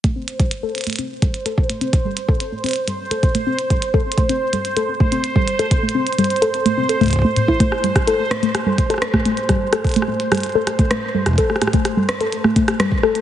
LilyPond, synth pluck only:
\new Staff \with { instrumentName = "Synth pluck" } { \time 4/4 \key g \mixolydian \tempo 4 = 127 a16 c'16 r16 g16 r16 a'16 r16 a16 c'16 r16 g16 r16 a'16 r16 a16 c'16 | r16 g16 r16 a'16 r16 a16 c'16 r16 g16 r16 a'16 r16 a16 c'16 r16 g16 | r16 a'16 r16 a16 c'16 r16 g16 r16 a'16 r16 a16 c'16 r16 g16 r16 a'16 | r16 a16 c'16 r16 g16 r16 a'16 r16 a16 c'16 a'16 a16 r16 a16 a,16 e'16 |
a16 r16 g16 r16 a'16 r16 a16 a16 r16 g16 r16 a'16 r16 a16 a16 r16 | g16 r16 a'16 r16 a16 a16 r16 g16 r16 a'16 r16 a16 a16 r16 g16 r16 | a'16 r16 a16 a16 r16 g16 r16 a'16 r16 a16 a16 r16 g16 r16 a'16 r16 | }